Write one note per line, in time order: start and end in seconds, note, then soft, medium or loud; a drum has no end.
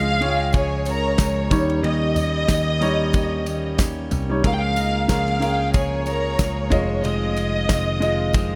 0.00 1.15 C#2 loud
0.00 0.18 C#3 medium
0.00 0.21 F3 medium
0.00 0.21 G#3 medium
0.00 0.22 G#3 medium
0.00 0.21 C#4 medium
0.00 0.15 F4 medium
0.00 0.21 F4 medium
0.00 0.19 G#4 medium
0.00 0.22 C#5 medium
0.00 0.14 D#5 medium
0.00 0.15 F5 medium
0.00 0.51 F5 loud
0.21 1.14 G#3 medium
0.21 0.53 G#3 medium
0.21 0.53 C#4 medium
0.21 1.14 F4 medium
0.21 0.54 G#4 medium
0.21 0.47 G#4 medium
0.21 1.14 C#5 medium
0.21 0.47 G5 loud
0.21 ride medium
0.53 0.86 C#3 medium
0.53 0.87 F3 medium
0.53 0.87 G#3 medium
0.53 0.86 C#4 medium
0.53 0.80 G#4 medium
0.53 0.85 G#4 medium
0.53 1.80 C#5 loud
0.53 0.80 G#5 medium
0.53 kick loud
0.53 ride medium
0.53 tambourine soft
0.85 1.19 G#3 soft
0.85 1.20 C#4 soft
0.85 1.19 G#4 medium
0.85 1.48 A#4 loud
0.85 1.48 A#5 loud
0.85 ride medium
0.85 tambourine soft
1.18 1.49 C#2 medium
1.18 1.52 F3 medium
1.18 1.52 G#3 medium
1.18 1.52 C#4 medium
1.18 1.51 G#4 medium
1.18 kick loud
1.18 snare loud
1.18 clap medium
1.18 ride medium
1.18 tambourine medium
1.50 1.82 D#2 loud
1.50 2.45 D#3 medium
1.50 2.56 G3 medium
1.50 1.83 A#3 soft
1.50 1.83 C#4 medium
1.50 2.56 D#4 medium
1.50 1.84 G4 medium
1.50 2.57 C#5 loud
1.50 kick loud
1.50 floor tom medium
1.50 ride medium
1.50 tambourine soft
1.70 ride soft
1.83 2.45 D#2 loud
1.83 2.16 D#3 medium
1.83 2.17 A#3 medium
1.83 2.16 C#4 medium
1.83 2.15 G4 loud
1.83 3.75 D#5 medium
1.83 ride medium
2.16 2.47 A#3 soft
2.16 2.48 C#4 medium
2.16 2.49 G4 medium
2.16 floor tom medium
2.16 ride medium
2.16 tambourine medium
2.48 4.08 D#2 medium
2.48 2.81 D#3 medium
2.48 2.81 A#3 medium
2.48 2.80 C#4 medium
2.48 2.79 G4 medium
2.48 kick medium
2.48 snare loud
2.48 clap medium
2.48 ride medium
2.48 tambourine medium
2.80 3.74 G3 medium
2.80 3.13 A#3 medium
2.80 3.14 C#4 medium
2.80 3.74 D#4 medium
2.80 3.14 G4 medium
2.80 3.74 C#5 medium
2.80 ride medium
2.80 tambourine soft
3.13 3.46 D#3 medium
3.13 3.47 A#3 medium
3.13 3.46 C#4 medium
3.13 3.45 G4 loud
3.13 kick loud
3.13 ride medium
3.13 tambourine medium
3.46 3.79 A#3 soft
3.46 3.79 C#4 medium
3.46 3.79 G4 medium
3.46 ride medium
3.46 tambourine soft
3.78 4.12 D#3 medium
3.78 4.12 A#3 medium
3.78 4.11 C#4 medium
3.78 4.10 G4 medium
3.78 kick loud
3.78 snare loud
3.78 clap loud
3.78 ride medium
3.78 tambourine medium
4.11 4.42 C2 loud
4.11 4.43 A#3 soft
4.11 4.44 C#4 medium
4.11 4.44 G4 medium
4.11 floor tom medium
4.11 ride medium
4.11 tambourine medium
4.29 4.40 G3 medium
4.29 4.40 D#4 medium
4.29 4.41 C#5 medium
4.43 5.05 C#2 loud
4.43 4.76 C#3 medium
4.43 5.38 C#3 medium
4.43 4.76 F3 loud
4.43 4.91 G#3 medium
4.43 4.77 A#3 medium
4.43 4.92 C#4 medium
4.43 4.76 F4 loud
4.43 4.74 G#4 loud
4.43 4.92 A#4 medium
4.43 4.52 F5 loud
4.43 kick loud
4.43 ride medium
4.43 tambourine soft
4.53 4.60 G5 medium
4.61 5.09 F5 loud
4.76 5.09 A#3 soft
4.76 5.03 D#4 medium
4.76 5.09 F4 medium
4.76 5.09 G#4 medium
4.76 5.03 D#5 medium
4.76 ride medium
4.76 tambourine medium
5.07 6.35 C#2 medium
5.07 5.42 F3 medium
5.07 5.33 G#3 medium
5.07 5.42 A#3 medium
5.07 5.33 C#4 medium
5.07 5.34 F4 medium
5.07 5.41 F4 medium
5.07 5.40 G#4 medium
5.07 5.34 A#4 medium
5.07 5.35 F5 medium
5.07 5.71 F5 loud
5.07 kick medium
5.07 snare loud
5.07 clap medium
5.07 ride medium
5.07 tambourine medium
5.28 ride soft
5.40 6.33 G#3 medium
5.40 5.74 A#3 medium
5.40 6.34 C#4 medium
5.40 5.75 F4 medium
5.40 5.67 G#4 medium
5.40 5.74 G#4 medium
5.40 6.34 A#4 medium
5.40 5.67 G5 loud
5.40 ride medium
5.40 tambourine soft
5.74 6.07 C#3 medium
5.74 6.07 F3 medium
5.74 6.07 A#3 medium
5.74 6.06 F4 medium
5.74 6.00 G#4 medium
5.74 6.05 G#4 medium
5.74 7.05 C#5 medium
5.74 6.00 G#5 loud
5.74 kick loud
5.74 ride medium
5.74 tambourine soft
6.06 6.38 A#3 soft
6.06 6.39 F4 medium
6.06 6.39 G#4 medium
6.06 6.68 A#4 loud
6.06 6.68 A#5 loud
6.06 ride medium
6.06 tambourine soft
6.38 6.69 C#2 medium
6.38 6.71 F3 medium
6.38 6.72 A#3 medium
6.38 6.70 F4 medium
6.38 6.71 G#4 medium
6.38 kick loud
6.38 snare loud
6.38 clap medium
6.38 ride medium
6.38 tambourine medium
6.70 7.02 F1 medium
6.70 7.04 D#3 soft
6.70 7.76 G#3 loud
6.70 7.04 G#3 soft
6.70 7.04 C4 medium
6.70 7.76 F4 medium
6.70 7.04 F4 medium
6.70 7.77 D#5 loud
6.70 kick loud
6.70 floor tom medium
6.70 ride medium
6.70 tambourine soft
7.04 7.65 F1 loud
7.04 7.37 F2 medium
7.04 7.37 C3 loud
7.04 7.37 D#3 medium
7.04 7.37 G#3 medium
7.04 7.36 C4 medium
7.04 7.35 F4 loud
7.04 8.55 D#5 medium
7.04 ride medium
7.04 tambourine soft
7.36 7.68 D#3 soft
7.36 7.69 G#3 medium
7.36 7.69 C4 medium
7.36 7.69 F4 medium
7.36 ride medium
7.36 tambourine soft
7.69 8.55 F1 medium
7.69 8.02 D#3 medium
7.69 8.01 G#3 medium
7.69 8.01 C4 medium
7.69 8.00 F4 medium
7.69 kick loud
7.69 snare loud
7.69 clap medium
7.69 ride medium
7.69 tambourine medium
8.00 8.33 D#3 medium
8.00 8.55 G#3 medium
8.00 8.33 G#3 medium
8.00 8.34 C4 medium
8.00 8.34 F4 medium
8.00 8.55 F4 medium
8.00 8.55 D#5 medium
8.00 ride medium
8.00 tambourine soft
8.33 8.55 F2 medium
8.33 8.55 C3 medium
8.33 8.55 D#3 medium
8.33 8.55 G#3 medium
8.33 8.55 C4 medium
8.33 8.55 F4 loud
8.33 kick loud
8.33 ride medium
8.33 tambourine medium